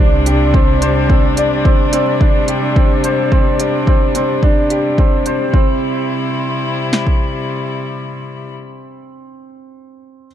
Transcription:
0.00 1.06 C2 medium
0.00 5.50 C3 medium
0.00 5.49 G3 medium
0.00 0.54 C4 medium
0.00 0.14 D4 medium
0.00 5.50 D4 medium
0.00 0.26 G4 medium
0.00 0.82 C5 medium
0.00 1.37 D5 medium
0.26 0.42 G4 medium
0.26 closed hi-hat medium
0.54 0.80 C4 medium
0.54 kick loud
0.82 1.08 C5 medium
0.82 closed hi-hat medium
1.09 1.36 C4 medium
1.09 kick medium
1.37 1.53 D5 medium
1.37 closed hi-hat medium
1.65 1.91 C4 medium
1.65 kick loud
1.93 2.08 C4 medium
1.93 closed hi-hat medium
2.21 2.36 D4 medium
2.21 kick medium
2.48 2.64 G4 medium
2.48 closed hi-hat medium
2.76 3.02 C4 medium
2.76 kick loud
3.04 3.30 C5 medium
3.04 closed hi-hat medium
3.32 3.58 C4 medium
3.32 kick medium
3.60 3.75 D5 medium
3.60 closed hi-hat medium
3.87 4.14 C4 medium
3.87 kick medium
4.15 4.31 C4 medium
4.15 closed hi-hat medium
4.43 4.59 D4 medium
4.43 kick medium
4.70 4.86 G4 medium
4.70 closed hi-hat soft
4.98 5.25 C4 medium
4.98 kick medium
5.26 5.52 C5 medium
5.26 closed hi-hat soft
5.53 8.52 C3 medium
5.53 8.52 G3 medium
5.53 5.79 C4 medium
5.53 8.52 E4 medium
5.53 kick medium
6.93 snare soft
7.07 kick medium

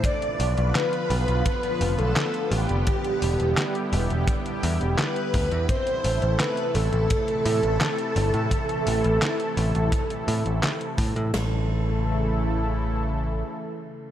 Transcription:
0.04 5.65 D3 medium
0.04 2.84 F3 medium
0.04 5.65 B3 medium
0.04 2.84 F4 medium
0.04 2.84 B4 medium
0.04 0.71 D5 loud
0.04 0.77 D5 loud
0.04 kick loud
0.04 closed hi-hat medium
0.22 closed hi-hat soft
0.40 0.54 B1 medium
0.40 open hi-hat medium
0.57 0.71 B1 medium
0.57 closed hi-hat soft
0.75 1.42 B4 loud
0.75 1.45 B4 loud
0.75 snare loud
0.75 clap medium
0.75 closed hi-hat medium
0.93 closed hi-hat soft
1.10 1.24 B1 medium
1.10 open hi-hat medium
1.28 1.42 B1 medium
1.28 closed hi-hat soft
1.46 2.00 B4 loud
1.46 1.95 B4 loud
1.46 kick loud
1.46 closed hi-hat medium
1.63 closed hi-hat soft
1.81 1.95 F1 loud
1.81 open hi-hat medium
1.98 2.13 B1 medium
1.98 2.53 A4 loud
1.98 2.48 A4 medium
1.98 closed hi-hat soft
2.16 snare loud
2.16 clap medium
2.16 closed hi-hat medium
2.34 closed hi-hat soft
2.51 2.65 A1 medium
2.51 3.93 G4 medium
2.51 3.89 G4 medium
2.51 open hi-hat medium
2.69 2.83 F1 medium
2.69 closed hi-hat soft
2.87 5.66 G3 medium
2.87 11.30 E4 medium
2.87 5.66 G4 medium
2.87 kick loud
2.87 closed hi-hat medium
3.04 closed hi-hat soft
3.22 3.36 E1 medium
3.22 open hi-hat medium
3.40 3.54 E1 medium
3.40 closed hi-hat soft
3.57 snare loud
3.57 clap loud
3.57 closed hi-hat medium
3.75 closed hi-hat soft
3.93 4.07 E1 loud
3.93 open hi-hat medium
4.10 4.24 E1 medium
4.10 closed hi-hat soft
4.28 kick loud
4.28 closed hi-hat medium
4.46 closed hi-hat soft
4.63 4.77 E2 loud
4.63 open hi-hat medium
4.81 4.95 E1 medium
4.81 closed hi-hat soft
4.98 5.65 B4 loud
4.98 snare loud
4.98 clap medium
4.98 closed hi-hat medium
5.16 closed hi-hat soft
5.34 5.48 D2 medium
5.34 kick loud
5.34 open hi-hat medium
5.51 5.66 E2 medium
5.51 closed hi-hat soft
5.69 11.30 C3 medium
5.69 11.30 E3 medium
5.69 11.30 A3 medium
5.69 11.30 A4 medium
5.69 6.36 C5 loud
5.69 kick loud
5.69 closed hi-hat medium
5.87 closed hi-hat soft
6.04 6.19 A1 medium
6.04 open hi-hat medium
6.22 6.36 A1 medium
6.22 closed hi-hat soft
6.39 6.72 B4 loud
6.39 6.76 B4 loud
6.39 snare loud
6.39 clap loud
6.39 closed hi-hat medium
6.57 closed hi-hat soft
6.75 6.89 A1 loud
6.75 10.59 A4 loud
6.75 10.63 A4 loud
6.75 open hi-hat medium
6.93 7.07 A1 medium
6.93 closed hi-hat soft
7.10 kick loud
7.10 closed hi-hat medium
7.28 closed hi-hat soft
7.46 7.60 A2 loud
7.46 open hi-hat medium
7.63 7.77 A1 medium
7.63 closed hi-hat soft
7.81 snare loud
7.81 clap loud
7.81 closed hi-hat medium
7.98 closed hi-hat soft
8.16 8.30 G1 loud
8.16 open hi-hat medium
8.34 8.48 A2 medium
8.34 closed hi-hat soft
8.51 kick loud
8.51 closed hi-hat medium
8.69 closed hi-hat soft
8.87 9.01 A1 medium
8.87 open hi-hat medium
9.04 9.18 A1 medium
9.04 closed hi-hat soft
9.22 snare loud
9.22 clap loud
9.22 closed hi-hat loud
9.40 closed hi-hat soft
9.57 9.71 A1 loud
9.57 open hi-hat medium
9.75 9.89 A1 medium
9.75 closed hi-hat soft
9.92 kick loud
9.92 closed hi-hat medium
10.10 closed hi-hat soft
10.28 10.42 A2 medium
10.28 open hi-hat medium
10.46 10.60 A1 medium
10.46 closed hi-hat soft
10.63 snare loud
10.63 clap loud
10.63 closed hi-hat loud
10.81 closed hi-hat soft
10.98 11.12 A2 medium
10.98 kick loud
10.98 open hi-hat medium
11.16 11.30 A2 medium
11.16 closed hi-hat soft
11.34 13.42 A1 loud
11.34 14.11 C#3 medium
11.34 14.11 E3 medium
11.34 14.11 A3 medium
11.34 14.11 E4 medium
11.34 14.11 A4 loud
11.34 snare loud
11.34 ride bell medium

